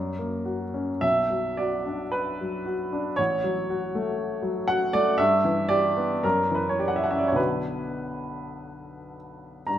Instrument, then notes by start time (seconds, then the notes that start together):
upright piano
Already playing: F#2
0.19 A#3
0.45 F#4
0.74 C#4
1.01 B1 E5
1.30 F#3
1.57 F#4 D5
1.86 D4
2.12 B4
2.41 F#3
2.66 F#4
2.93 D4
3.16 A1 C#5
3.44 F#3
3.70 F#4
3.95 A3
4.43 F#3
4.68 F#4 F#5
4.93 A3 D5
5.18 G2 E5
5.45 E3
5.69 G4 D5
5.97 B3
6.23 F#2 A#4
6.51 E3 B4
6.69 C#5
6.79 G4 D5
6.88 F#5
6.96 E5
7.04 F#5
7.10 C#4 E5
7.19 D5
7.27 C#5
7.32 B1 D3 B3 B4
7.36 F#4
9.67 G2 A#5